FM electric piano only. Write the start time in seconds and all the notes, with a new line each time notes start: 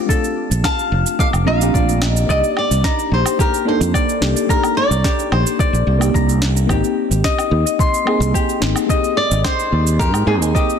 Already playing: A3 C4 D4 F4 G4
0.06 A3 C4 D4
0.12 F4
1.45 A3 C4 D4 F4
1.59 A3 C4 D4 G4
1.73 A3 C4 D4 F4
2.26 A#3 D4 D#4
2.32 G4
3.65 A#3 D4 D#4 A4
4.20 A#3 D4 D#4 G4
4.47 A#3 D4
4.51 D#4 G4
5.98 A#3 D4 D#4
6.04 G4
6.67 A#3 C4 D#4
6.72 G4
8.05 A#3 C4 D#4 G#4
8.60 A#3 C4 D#4 G4
8.86 A#3 C4 D#4
8.92 G4
10.26 A#3 C4 D#4 G4
10.39 A#3 C4 D#4 G#4
10.54 A#3 C4 D#4 G4